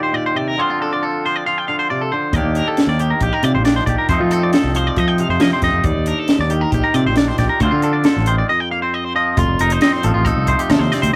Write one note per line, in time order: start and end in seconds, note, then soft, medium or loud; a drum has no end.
0.00 0.57 D#2 medium
0.00 0.12 A#2 soft
0.00 0.57 D#3 medium
0.00 0.59 D4 medium
0.00 0.55 G4 medium
0.00 0.14 C5 medium
0.13 0.35 A#2 medium
0.13 0.25 D5 medium
0.26 0.36 C5 medium
0.35 0.57 C3 medium
0.35 0.48 D5 medium
0.48 0.60 A#4 medium
0.58 1.68 D3 medium
0.58 1.25 F3 medium
0.58 2.31 C4 medium
0.58 0.80 D4 medium
0.58 1.47 F4 medium
0.58 0.70 C5 medium
0.70 0.80 F4 medium
0.81 2.31 D4 medium
0.81 0.92 A4 medium
0.93 1.03 D5 medium
1.03 1.24 A4 medium
1.25 2.35 F3 medium
1.25 1.36 C5 medium
1.36 1.46 D5 medium
1.46 2.37 F4 medium
1.46 1.58 F5 medium
1.58 1.68 G5 medium
1.68 1.90 D3 soft
1.68 1.79 F5 medium
1.79 1.90 C5 medium
1.90 2.12 C3 medium
1.90 2.01 D5 medium
2.01 2.12 A4 medium
2.12 2.34 D3 medium
2.12 2.34 C5 medium
2.33 2.41 D#2 medium
2.33 4.09 D#2 medium
2.33 2.99 D#3 medium
2.33 4.08 A#3 medium
2.33 2.57 D5 medium
2.33 kick loud
2.33 closed hi-hat medium
2.37 2.55 D4 medium
2.37 3.22 G4 medium
2.43 2.60 D#2 medium
2.55 3.66 D4 medium
2.55 2.67 A#4 medium
2.55 closed hi-hat soft
2.68 2.89 A4 medium
2.77 snare medium
2.77 closed hi-hat medium
2.87 3.12 D#2 medium
2.87 3.00 D5 medium
2.99 4.09 D#3 medium
2.99 3.11 G4 medium
2.99 closed hi-hat medium
3.10 3.22 A#4 medium
3.21 3.29 A#1 medium
3.21 3.33 G4 medium
3.21 3.88 G4 medium
3.21 kick medium
3.21 closed hi-hat medium
3.33 3.44 A#4 medium
3.43 4.10 A#2 soft
3.43 3.56 C3 medium
3.43 3.54 D5 medium
3.43 closed hi-hat medium
3.54 3.79 A#1 medium
3.54 3.65 C5 medium
3.65 4.08 D4 medium
3.65 3.76 D5 medium
3.65 snare medium
3.65 closed hi-hat medium
3.76 3.86 C5 medium
3.86 3.95 A#1 medium
3.86 4.07 G4 medium
3.86 3.98 D5 medium
3.86 kick medium
3.86 closed hi-hat medium
3.98 4.09 A#4 medium
4.09 4.17 F2 medium
4.09 5.83 F2 medium
4.09 4.75 F3 medium
4.09 5.83 A3 medium
4.09 4.31 C4 soft
4.09 4.98 D#4 medium
4.09 4.20 C5 medium
4.09 kick loud
4.09 closed hi-hat medium
4.20 4.53 F3 medium
4.20 4.31 F4 medium
4.31 5.40 C4 medium
4.31 4.42 A4 medium
4.31 closed hi-hat medium
4.43 4.53 D5 medium
4.53 4.76 A4 medium
4.53 snare loud
4.53 closed hi-hat medium
4.64 4.89 C2 medium
4.75 5.88 F3 medium
4.75 4.87 C5 medium
4.75 closed hi-hat medium
4.87 4.98 D5 medium
4.96 5.22 F3 medium
4.96 5.62 D#4 medium
4.96 5.08 D#5 medium
4.96 kick medium
4.96 closed hi-hat medium
5.08 5.20 G5 medium
5.18 5.82 C3 soft
5.18 5.30 F5 medium
5.18 closed hi-hat medium
5.29 5.37 F2 medium
5.29 5.41 C5 medium
5.40 5.49 F3 medium
5.40 5.51 A#3 medium
5.40 5.52 D#5 medium
5.40 snare loud
5.40 closed hi-hat medium
5.51 5.84 C4 soft
5.51 5.63 C5 medium
5.62 5.71 F2 medium
5.62 6.73 D#4 medium
5.62 5.85 D#5 medium
5.62 kick medium
5.62 snare soft
5.62 closed hi-hat soft
5.73 5.82 F2 medium
5.84 5.92 D#2 medium
5.84 7.61 D#2 medium
5.84 6.08 D5 medium
5.84 kick loud
5.84 closed hi-hat medium
5.95 6.12 D#2 medium
6.06 7.17 D4 medium
6.06 6.19 A#4 medium
6.06 closed hi-hat soft
6.19 6.40 A4 medium
6.28 snare loud
6.28 closed hi-hat medium
6.39 6.64 D#2 medium
6.39 6.51 D5 medium
6.50 7.61 D#3 medium
6.50 6.61 G4 medium
6.50 closed hi-hat medium
6.61 6.71 A#4 medium
6.71 6.81 A#1 medium
6.71 6.83 G4 medium
6.71 7.38 G4 medium
6.71 kick medium
6.71 closed hi-hat medium
6.84 6.94 A#4 medium
6.94 7.61 A#2 soft
6.94 7.07 C3 medium
6.94 7.06 D5 medium
6.94 closed hi-hat medium
7.06 7.31 A#1 medium
7.06 7.17 C5 medium
7.16 7.59 D4 medium
7.16 7.28 D5 medium
7.16 snare medium
7.16 closed hi-hat medium
7.28 7.38 C5 medium
7.38 7.47 A#1 medium
7.38 7.59 G4 medium
7.38 7.49 D5 medium
7.38 kick medium
7.38 snare soft
7.38 closed hi-hat medium
7.49 7.61 A#4 medium
7.60 7.69 D2 medium
7.60 8.04 D3 medium
7.60 8.27 F3 soft
7.60 8.48 C4 medium
7.60 7.82 D4 medium
7.60 7.72 C5 medium
7.60 kick loud
7.60 closed hi-hat medium
7.65 8.48 F4 medium
7.71 8.05 D3 medium
7.71 7.83 F4 medium
7.82 8.47 D4 medium
7.82 7.94 A4 medium
7.82 closed hi-hat medium
7.93 8.05 D5 medium
8.04 8.27 D3 medium
8.04 8.27 A4 medium
8.04 snare loud
8.04 closed hi-hat medium
8.16 8.41 A1 medium
8.26 8.49 D#3 medium
8.26 8.38 C5 medium
8.26 closed hi-hat medium
8.38 8.49 D5 medium
8.49 9.35 F2 medium
8.49 8.60 D#5 medium
8.60 8.71 G5 medium
8.71 8.83 A#3 soft
8.71 8.82 F5 medium
8.82 9.38 C4 soft
8.82 8.94 C5 medium
8.94 9.04 D#5 medium
9.04 9.15 C5 medium
9.15 9.35 F3 medium
9.15 9.38 D#5 medium
9.37 9.46 F1 medium
9.37 11.12 F2 medium
9.37 9.60 F4 medium
9.37 kick loud
9.37 closed hi-hat medium
9.48 9.56 F1 medium
9.59 9.77 F1 medium
9.59 10.26 D#4 medium
9.59 9.72 A#4 medium
9.59 closed hi-hat medium
9.70 9.82 C5 medium
9.70 closed hi-hat medium
9.81 10.92 C4 medium
9.81 9.93 D#5 medium
9.81 snare loud
9.81 closed hi-hat medium
9.93 10.04 C5 medium
10.03 10.12 A1 medium
10.03 11.13 F3 medium
10.03 10.14 A4 medium
10.03 closed hi-hat medium
10.14 10.31 A1 medium
10.14 10.25 F4 medium
10.25 11.15 D#4 medium
10.25 10.48 A4 medium
10.25 kick medium
10.25 closed hi-hat medium
10.36 10.53 C2 medium
10.47 11.12 A3 medium
10.47 10.59 C5 medium
10.47 kick medium
10.47 closed hi-hat medium
10.59 10.70 G4 medium
10.59 closed hi-hat medium
10.70 10.78 D#2 medium
10.70 11.12 C3 medium
10.70 10.81 A4 medium
10.70 snare loud
10.70 closed hi-hat medium
10.79 10.88 D#2 medium
10.79 10.92 C5 medium
10.92 11.16 C4 medium
10.92 11.02 D5 medium
10.92 snare soft
10.92 closed hi-hat medium
11.02 11.11 D2 medium
11.02 11.13 C5 medium
11.02 closed hi-hat medium
11.13 11.16 D#2 medium